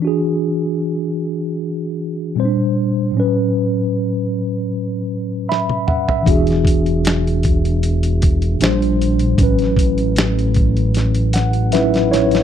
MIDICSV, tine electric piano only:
0, 0, Header, 1, 2, 480
1, 0, Start_track
1, 0, Key_signature, 3, "major"
1, 0, Tempo, 779221
1, 20, Time_signature, 4, 2, 24, 8
1, 7658, End_track
2, 0, Start_track
2, 0, Title_t, "Tine electric piano"
2, 0, Program_c, 0, 4
2, 0, Note_on_c, 0, 52, 55
2, 13, Note_on_c, 0, 62, 51
2, 29, Note_on_c, 0, 66, 49
2, 45, Note_on_c, 0, 68, 63
2, 137, Control_c, 0, 64, 127
2, 1423, Note_off_c, 0, 52, 0
2, 1432, Note_off_c, 0, 62, 0
2, 1440, Note_off_c, 0, 66, 0
2, 1448, Note_off_c, 0, 68, 0
2, 1451, Note_on_c, 0, 46, 58
2, 1459, Note_on_c, 0, 55, 57
2, 1468, Control_c, 0, 64, 0
2, 1468, Note_on_c, 0, 60, 43
2, 1477, Note_on_c, 0, 72, 66
2, 1507, Note_off_c, 0, 60, 0
2, 1510, Note_on_c, 0, 62, 51
2, 1577, Control_c, 0, 64, 127
2, 1920, Note_on_c, 0, 45, 60
2, 1935, Note_off_c, 0, 46, 0
2, 1935, Note_on_c, 0, 54, 54
2, 1939, Note_off_c, 0, 55, 0
2, 1948, Control_c, 0, 64, 0
2, 1949, Note_off_c, 0, 72, 0
2, 1952, Note_on_c, 0, 61, 54
2, 1965, Note_off_c, 0, 62, 0
2, 1969, Note_on_c, 0, 71, 65
2, 2062, Control_c, 0, 64, 127
2, 3383, Note_on_c, 0, 76, 54
2, 3383, Note_on_c, 0, 83, 58
2, 3605, Note_off_c, 0, 83, 0
2, 3609, Note_off_c, 0, 76, 0
2, 3619, Note_on_c, 0, 78, 52
2, 3621, Note_on_c, 0, 76, 50
2, 3740, Note_off_c, 0, 76, 0
2, 3741, Note_off_c, 0, 78, 0
2, 3748, Note_on_c, 0, 76, 54
2, 3825, Note_off_c, 0, 45, 0
2, 3833, Note_off_c, 0, 54, 0
2, 3836, Note_on_c, 0, 52, 62
2, 3842, Note_off_c, 0, 61, 0
2, 3850, Note_off_c, 0, 71, 0
2, 3854, Note_on_c, 0, 62, 55
2, 3869, Control_c, 0, 64, 0
2, 3871, Note_on_c, 0, 66, 54
2, 3884, Note_on_c, 0, 68, 63
2, 3976, Note_off_c, 0, 76, 0
2, 3996, Control_c, 0, 64, 127
2, 5263, Note_off_c, 0, 52, 0
2, 5272, Note_off_c, 0, 62, 0
2, 5281, Note_off_c, 0, 66, 0
2, 5288, Note_off_c, 0, 68, 0
2, 5293, Note_on_c, 0, 46, 57
2, 5302, Note_on_c, 0, 55, 57
2, 5307, Control_c, 0, 64, 0
2, 5310, Note_on_c, 0, 62, 55
2, 5317, Note_on_c, 0, 72, 69
2, 5411, Control_c, 0, 64, 127
2, 5760, Note_on_c, 0, 45, 60
2, 5776, Note_off_c, 0, 46, 0
2, 5777, Note_on_c, 0, 54, 55
2, 5781, Note_off_c, 0, 55, 0
2, 5785, Note_off_c, 0, 62, 0
2, 5787, Control_c, 0, 64, 0
2, 5789, Note_off_c, 0, 72, 0
2, 5795, Note_on_c, 0, 61, 58
2, 5810, Note_on_c, 0, 71, 65
2, 5891, Control_c, 0, 64, 127
2, 6984, Note_on_c, 0, 78, 56
2, 7186, Note_off_c, 0, 45, 0
2, 7194, Note_off_c, 0, 54, 0
2, 7203, Note_off_c, 0, 61, 0
2, 7205, Note_off_c, 0, 78, 0
2, 7210, Note_off_c, 0, 71, 0
2, 7213, Note_on_c, 0, 45, 46
2, 7220, Note_on_c, 0, 54, 42
2, 7224, Note_on_c, 0, 76, 59
2, 7227, Note_on_c, 0, 71, 76
2, 7229, Note_on_c, 0, 61, 42
2, 7229, Note_on_c, 0, 64, 58
2, 7237, Note_on_c, 0, 63, 44
2, 7269, Note_off_c, 0, 64, 0
2, 7271, Note_off_c, 0, 63, 0
2, 7277, Note_on_c, 0, 64, 53
2, 7458, Note_off_c, 0, 64, 0
2, 7463, Note_on_c, 0, 73, 77
2, 7465, Note_on_c, 0, 64, 63
2, 7470, Note_off_c, 0, 71, 0
2, 7658, Note_off_c, 0, 45, 0
2, 7658, Note_off_c, 0, 54, 0
2, 7658, Note_off_c, 0, 61, 0
2, 7658, Note_off_c, 0, 64, 0
2, 7658, Note_off_c, 0, 73, 0
2, 7658, Note_off_c, 0, 76, 0
2, 7658, End_track
0, 0, End_of_file